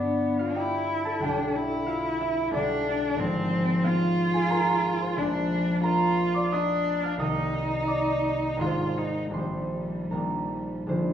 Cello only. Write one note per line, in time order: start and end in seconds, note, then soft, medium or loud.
0.00 0.58 B3 medium
0.56 1.25 E4 medium
1.24 1.57 D4 soft
1.56 2.54 E4 medium
2.54 3.21 D4 medium
3.19 3.88 C4 medium
3.86 5.20 F4 medium
5.18 5.83 D4 medium
5.84 6.55 F4 medium
6.53 7.20 D4 medium
7.21 8.62 D#4 medium
8.61 8.99 F4 medium
8.98 9.35 D#4 medium
9.36 11.13 G3 soft